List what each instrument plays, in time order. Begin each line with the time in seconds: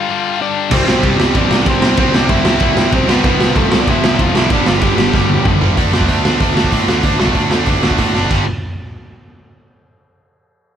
Already playing: distorted electric guitar G3 D4, overdriven electric guitar F4 F5
0.09 distorted electric guitar G2 D3 G3
0.41 overdriven electric guitar D4 D5
0.70 picked electric bass C2, distorted electric guitar C3 G3 C4 E4 G4, overdriven electric guitar C4 C5, kick, crash
0.87 picked electric bass C2, snare
1.03 picked electric bass C2, overdriven electric guitar G3 G4, kick, ride
1.18 picked electric bass C2, distorted electric guitar C3 G3 C4 E4 G4, snare
1.34 picked electric bass A1, distorted electric guitar C3 G3 C4, overdriven electric guitar D4 D5, kick, ride
1.50 picked electric bass C2, snare
1.65 picked electric bass C2, distorted electric guitar C3 G3 C4 E4 G4, overdriven electric guitar C4, kick, ride
1.70 overdriven electric guitar C5
1.81 picked electric bass C2, distorted electric guitar C3 G3 C4, snare
1.97 picked electric bass C2, distorted electric guitar C3 G3 C4 E4, overdriven electric guitar C4, kick, ride
2.01 distorted electric guitar G4, overdriven electric guitar C5
2.14 picked electric bass C2, overdriven electric guitar D4 D5, snare
2.29 picked electric bass C2, overdriven electric guitar E4 E5, kick, ride
2.45 picked electric bass C2, distorted electric guitar C3 G3 C4 E4 G4, snare
2.60 picked electric bass C2, distorted electric guitar C3 G3 C4, kick, ride
2.77 snare
2.92 picked electric bass C2, distorted electric guitar C3 G3 C4 E4 G4, overdriven electric guitar C4 C5, kick, ride
3.08 distorted electric guitar C3 G3 C4, overdriven electric guitar B3 B4, snare
3.23 picked electric bass C2, distorted electric guitar F2 C3 F3 C4 F4, kick, ride
3.28 distorted electric guitar A4
3.40 picked electric bass C2, snare
3.55 picked electric bass C2, overdriven electric guitar A3 A4, kick, ride
3.70 picked electric bass C2, distorted electric guitar C3 F3 C4 F4 A4, snare
3.81 overdriven electric guitar D5
3.87 picked electric bass A1, distorted electric guitar F2 C3 F3, overdriven electric guitar E4 E5, kick, ride
4.04 picked electric bass C2, snare
4.17 picked electric bass C2, distorted electric guitar C3 F3 C4 F4 A4, kick, ride
4.22 overdriven electric guitar F4 F5
4.35 picked electric bass C2, distorted electric guitar F2 C3 F3, overdriven electric guitar E4 E5, snare
4.49 picked electric bass G1, distorted electric guitar G2 D3 G3 B3 D4, overdriven electric guitar D4 D5, kick, ride
4.53 distorted electric guitar G3 G4
4.66 picked electric bass G1, overdriven electric guitar F4 F5, snare
4.81 picked electric bass G1, overdriven electric guitar G4 G5, kick, ride
4.96 picked electric bass G1, distorted electric guitar G2 D3 G3 B3 D4 G4, snare
5.13 picked electric bass G1, distorted electric guitar G2 D3 G3, kick, snare
5.29 high tom
5.44 picked electric bass G1, distorted electric guitar G2 D3 G3 B3 D4 G4, kick, mid tom
5.61 distorted electric guitar G2 D3 G3, floor tom
5.77 picked electric bass D2, distorted electric guitar D3 A3 D4, kick, open hi-hat
5.91 picked electric bass C2, distorted electric guitar D3 A3 D4, snare
6.01 kick
6.08 picked electric bass D2, distorted electric guitar D3 A3 D4, kick, open hi-hat
6.24 picked electric bass D2, distorted electric guitar D3 A3 D4, snare
6.40 picked electric bass D2, distorted electric guitar D3 A3 D4, kick, open hi-hat
6.56 picked electric bass D2, distorted electric guitar D3 A3 D4, snare
6.64 kick
6.72 picked electric bass A2, distorted electric guitar D3 A3 D4, kick, open hi-hat
6.88 picked electric bass D2, distorted electric guitar D3 A3 D4, snare
7.03 picked electric bass D2, distorted electric guitar D3 A3 D4, kick, open hi-hat
7.20 picked electric bass C2, distorted electric guitar D3 A3 D4, snare
7.27 kick
7.35 picked electric bass D2, distorted electric guitar D3 A3 D4, kick, open hi-hat
7.51 picked electric bass D2, distorted electric guitar D3 A3 D4, snare
7.66 picked electric bass D2, distorted electric guitar D3 A3 D4, kick, open hi-hat
7.83 picked electric bass D2, distorted electric guitar D3 A3 D4, snare
7.91 kick
7.98 picked electric bass A2, distorted electric guitar D3 A3 D4, kick, open hi-hat
8.14 picked electric bass F#1, distorted electric guitar D3 A3 D4, snare
8.30 picked electric bass G1, distorted electric guitar G2 D3 G3, kick, crash